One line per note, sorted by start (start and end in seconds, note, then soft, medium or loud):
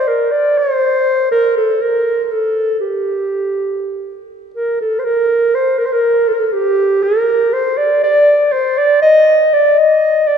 0.07 0.33 A#4 medium
0.31 0.59 D5 medium
0.58 1.31 C5 loud
1.31 1.54 A#4 loud
1.57 1.83 A4 medium
1.81 2.24 A#4 medium
2.24 2.33 A#4 medium
2.31 2.80 A4 medium
2.80 4.26 G4 medium
4.55 4.78 A#4 medium
4.81 5.00 A4 medium
4.99 5.06 C5 medium
5.05 5.56 A#4 loud
5.55 5.80 C5 medium
5.78 5.87 A#4 medium
5.86 5.94 C5 medium
5.92 6.30 A#4 medium
6.28 6.36 A4 medium
6.34 6.41 A#4 medium
6.40 6.46 A4 medium
6.46 6.54 A4 medium
6.53 7.05 G4 loud
7.03 7.55 A#4 loud
7.53 7.79 C5 medium
7.78 8.03 D5 medium
8.03 8.54 D5 medium
8.52 8.80 C5 medium
8.78 9.02 D5 medium
9.02 9.55 D#5 loud
9.53 9.80 D5 medium
9.78 10.28 D#5 loud
10.27 10.38 D5 medium